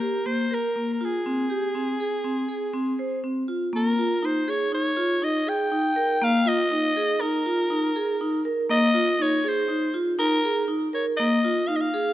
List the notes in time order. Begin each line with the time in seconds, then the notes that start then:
Already playing: A#4
0.01 G4
0.26 A#3 C5
0.51 A#4
0.76 A#3
0.93 A#4
1.01 F4 G#4
1.26 C4
1.50 G4
1.75 C4
2.00 G#4
2.24 C4
2.49 G#4
2.73 C4
2.99 C5
3.24 C4
3.48 F4
3.73 A#3 A#4
3.99 F4
4.23 D#4 C5
4.48 G#4 C#5
4.72 D#4 C#5
4.97 F4
5.22 D#4 D#5
5.47 G#4 G5
5.72 D#4
5.96 A#4
6.21 A#3 F5
6.46 F4 D#5
6.71 D#4
6.96 G#4
7.21 D#4 A#4
7.46 F4
7.70 D#4
7.96 G#4
8.21 D#4
8.45 A#4
8.69 A#3 D#5
8.94 F4
9.19 D#4 C#5
9.44 G#4 C5
9.68 D#4
9.94 F4
10.19 D#4 A#4
10.44 G#4
10.68 D#4
10.93 A#4 C#5
11.17 A#3 D#5
11.44 F4
11.67 D#4 F5
11.76 D#5
11.81 F5
11.94 G#4